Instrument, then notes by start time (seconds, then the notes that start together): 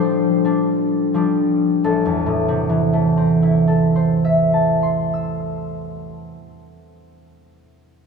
harp
Already playing: A2 F3 G3 A3 D4 A4 C5
0.45 G3 D4
1.14 F3 G3 D4
1.84 A1 A4
2.05 E2
2.26 A2
2.48 C3
2.69 E3
2.93 A3
3.17 C4
3.42 E4
3.68 A4
3.96 C5
4.25 E5
4.54 A5
4.83 C6
5.13 E6